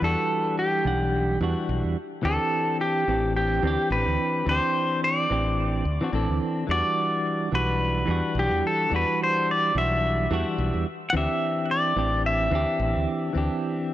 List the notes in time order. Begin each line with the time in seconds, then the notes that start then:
0.00 E2 E3 G3 D4
0.04 F#4 A4
0.59 G4
0.84 B1 E3 G3 D4 F#5
1.40 E2 E3 G3 D4 F#4
1.69 B1
1.84 E2
2.23 D2 E3 C4 D4 A4
2.27 G4
2.81 G4
3.08 A1 E3 C4 D4 G4
3.37 G4
3.62 D2 E3 C4 D4
3.67 G4
3.90 A1 B4
4.07 D2
4.46 D2 E3 C4 D4 C5
4.51 G4
5.04 D5
5.30 A1 E3 C4 D4 G4
5.85 D2
6.01 E3 C4 D4 F#4
6.13 A1 E3 C4 D4 A4
6.29 D2
6.67 E2 E3 G3 D4
6.71 F#4 D5
7.52 B1 E3 G3 D4 F#4 B4
8.06 E2 E3 G3 D4
8.11 F#4
8.35 B1
8.39 G4
8.51 E2
8.67 A4
8.90 E2 E3 G3 D4
8.95 F#4 B4
9.23 C5
9.51 D5
9.75 B1 E3 G3 D4 F#4 E5
10.31 E2 E3 G3 D4 F#4
10.58 B1
10.74 E2
11.10 E3 F#5
11.14 D2 C4 D4 G4 E5
11.71 D5
11.96 A1 E3 C4 D4 G4
12.26 E5
12.51 D2 E3 C4 D4
12.55 G4
12.79 A1
12.96 D2
13.33 D2 E3 C4 D4
13.38 G4